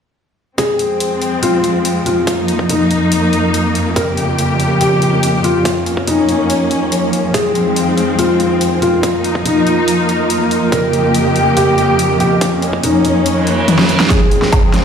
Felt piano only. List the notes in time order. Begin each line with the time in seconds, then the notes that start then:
0.58 G#4
1.43 F4
2.06 F4
2.69 D#4
3.96 A#4
4.81 G4
5.44 F4
6.07 D#4
7.34 G#4
8.19 F4
8.82 F4
9.45 D#4
10.72 A#4
11.57 G4
12.20 G4
12.84 D#4
14.10 G#4